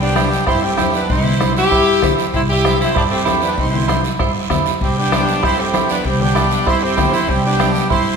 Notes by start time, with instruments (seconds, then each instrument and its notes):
Already playing: upright bass C2
0.01 saxophone section B3 D4, accordion G4
0.16 clean electric guitar E4 G4 C5, bombo rim, high conga, short guiro
0.33 short guiro
0.46 upright bass G2, saxophone section C4 E4, clean electric guitar E4 G4 C5, accordion C5, bombo low, bombo rim, high conga, long guiro
0.63 saxophone section A3 C4, accordion G4
0.78 upright bass E2, clean electric guitar E4 G4 C5, bombo rim, high conga, short guiro
0.94 saxophone section B3 D4, accordion B4, short guiro
1.09 upright bass C2, saxophone section C4 E4, accordion C5, bombo low, high conga, long guiro
1.24 low conga
1.40 clean electric guitar E4 G4 C5, bombo rim, high conga, short guiro
1.57 saxophone section E4 G4, accordion E5, short guiro
1.71 upright bass G2, clean electric guitar E4 G4 C5, bombo low, high conga, long guiro
2.02 upright bass E2, clean electric guitar E4 G4 C5, bombo low, bombo rim, high conga, low conga, short guiro
2.19 short guiro
2.34 upright bass C2, saxophone section C4 E4, accordion C5, bombo low, high conga, long guiro
2.49 saxophone section E4 G4, accordion E5
2.64 clean electric guitar E4 G4 C5, bombo rim, high conga, short guiro
2.81 saxophone section C4 E4, accordion C5, short guiro
2.95 upright bass G2, saxophone section G3 D4, clean electric guitar E4 G4 C5, accordion G4, bombo low, bombo rim, high conga, long guiro
3.10 saxophone section A3 C4, accordion G4
3.25 upright bass E2, clean electric guitar E4 G4 C5, bombo rim, high conga, short guiro
3.42 saxophone section B3 D4, accordion B4, short guiro
3.57 upright bass C2, saxophone section C4 E4, accordion C5, bombo low, high conga, long guiro
3.74 low conga
3.88 clean electric guitar E4 G4 C5, bombo rim, high conga, short guiro
4.04 short guiro
4.19 upright bass G2, clean electric guitar E4 G4 C5, bombo low, bombo rim, high conga, long guiro
4.50 upright bass E2, clean electric guitar E4 G4 C5, bombo low, bombo rim, high conga, low conga, short guiro
4.66 short guiro
4.81 upright bass C2, saxophone section G3 C4, accordion G4, bombo low, high conga, long guiro
4.98 saxophone section B3 D4, accordion G4
5.12 clean electric guitar E4 G4 C5, bombo rim, high conga, short guiro
5.28 short guiro
5.43 upright bass G2, saxophone section C4 E4, clean electric guitar E4 G4 C5, accordion C5, bombo low, bombo rim, high conga, long guiro
5.58 saxophone section A3 C4, accordion G4
5.73 upright bass E2, clean electric guitar E4 G4 C5, bombo rim, high conga, short guiro
5.89 saxophone section B3 D4, accordion B4, short guiro
6.05 upright bass C2, saxophone section G3 C4, accordion G4, bombo low, high conga, long guiro
6.20 saxophone section B3 D4, accordion G4, low conga
6.35 clean electric guitar E4 G4 D5, bombo rim, high conga, short guiro
6.51 short guiro
6.66 upright bass G2, saxophone section C4 E4, clean electric guitar E4 G4 C5, accordion C5, bombo low, bombo rim, high conga, long guiro
6.82 saxophone section A3 C4, accordion G4
6.97 upright bass E2, clean electric guitar E4 G4 C5, bombo low, bombo rim, high conga, low conga, short guiro
7.13 saxophone section C4 E4, accordion C5, short guiro
7.28 upright bass C2, saxophone section G3 C4, accordion G4, bombo low, high conga, long guiro
7.45 saxophone section B3 D4, accordion G4
7.59 clean electric guitar E4 G4 C5, bombo rim, high conga, short guiro
7.75 short guiro
7.90 upright bass G2, saxophone section C4 E4, clean electric guitar E4 G4 C5, accordion C5, bombo low, high conga, long guiro